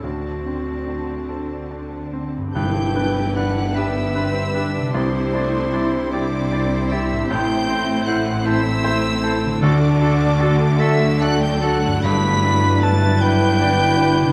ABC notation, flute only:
X:1
M:6/8
L:1/16
Q:3/8=51
K:Dmix
V:1 name="Flute"
z12 | [K:G] g4 f2 e6 | c6 d4 e2 | g4 f2 e4- e z |
d6 e2 f g f2 | b4 a2 g6 |]